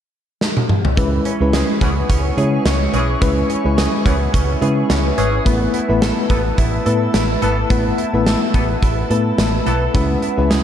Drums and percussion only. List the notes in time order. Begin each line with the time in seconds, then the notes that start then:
0.41 snare
0.57 high tom
0.69 mid tom
0.85 floor tom
0.97 kick, closed hi-hat
1.25 closed hi-hat
1.53 snare, closed hi-hat
1.81 kick, closed hi-hat
2.10 kick, closed hi-hat
2.38 closed hi-hat
2.66 snare, closed hi-hat
2.94 closed hi-hat
3.22 kick, closed hi-hat
3.50 closed hi-hat
3.78 snare, closed hi-hat
4.06 kick, closed hi-hat
4.34 kick, closed hi-hat
4.62 closed hi-hat
4.90 snare, closed hi-hat
5.18 closed hi-hat
5.46 kick, closed hi-hat
5.74 closed hi-hat
6.02 snare, closed hi-hat
6.30 kick, closed hi-hat
6.58 kick, closed hi-hat
6.86 closed hi-hat
7.14 snare, closed hi-hat
7.42 closed hi-hat
7.70 kick, closed hi-hat
7.98 closed hi-hat
8.27 snare, closed hi-hat
8.54 kick, closed hi-hat
8.83 kick, closed hi-hat
9.11 closed hi-hat
9.38 snare, closed hi-hat
9.66 closed hi-hat
9.95 kick, closed hi-hat
10.22 closed hi-hat
10.51 snare, closed hi-hat